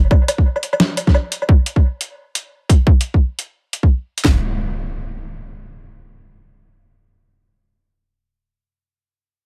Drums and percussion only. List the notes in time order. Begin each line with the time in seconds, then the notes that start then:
0.11 kick, low woodblock
0.28 closed hi-hat, low woodblock
0.38 kick
0.56 low woodblock
0.63 closed hi-hat
0.73 low woodblock
0.80 snare
0.97 closed hi-hat, low woodblock
1.07 kick, snare
1.14 low woodblock
1.32 closed hi-hat
1.42 low woodblock
1.49 kick
1.66 closed hi-hat
1.76 kick
2.01 closed hi-hat
2.35 closed hi-hat
2.69 kick, closed hi-hat
2.87 kick
3.01 closed hi-hat
3.14 kick
3.39 closed hi-hat
3.73 closed hi-hat
3.83 kick
4.18 closed hi-hat
4.24 kick, snare